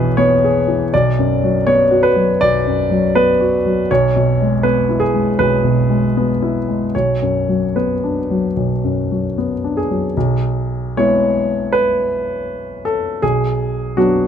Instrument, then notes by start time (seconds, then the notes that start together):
grand piano
Already playing: B1 B2 E3 B3 G#4 B4
0.17 B3 C#5
0.44 G#4
0.68 E3
0.94 B1 D5
1.19 F#2
1.44 F#3
1.67 B3 C#5
1.91 F#4
2.03 B4
2.16 F#3
2.41 B1 D5
2.66 F#2
2.91 F#3
3.15 B3 B4
3.41 F#4
3.66 F#3
3.91 B1 C#5
4.16 B2
4.41 G#3
4.63 B3 B4
4.89 E4
5.00 G#4
5.14 G#3
5.39 B1 B4
5.64 B2
5.90 G#3
6.17 B3
6.42 E4
6.69 G#3
6.95 B1 C#5
7.22 F#2
7.49 F#3
7.76 B3 B4
8.04 D4
8.30 F#3
8.56 B1
8.84 F#2
9.12 F#3
9.38 B3
9.64 D4
9.77 G#4
9.91 F#3
10.17 B1
10.97 G#3 B3 E4 C#5
11.72 B4
12.85 A4
13.22 B1 G#4
13.97 F#3 B3 D4 F#4